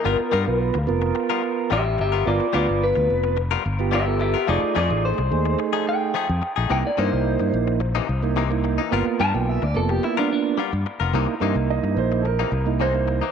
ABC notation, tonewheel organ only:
X:1
M:4/4
L:1/16
Q:1/4=108
K:Gdor
V:1 name="Tonewheel organ"
[=B,F^A]2 z [B,F=B]2 z [B,FA]6 z4 | [=B,F^A] z [B,F=B]6 z3 [B,FG] z [B,F=A]2 z | [A,_E^G]2 z [A,EG]2 z [A,EG]6 z4 | [B,^DE] z [B,DE]6 z3 [B,DE] z [B,DE]2 z |
[^A,=B,F]2 z [A,B,F]2 z [A,B,F]6 z4 | [B,^DE] z [B,DE]6 z3 [B,DE] z [B,DE]2 z |]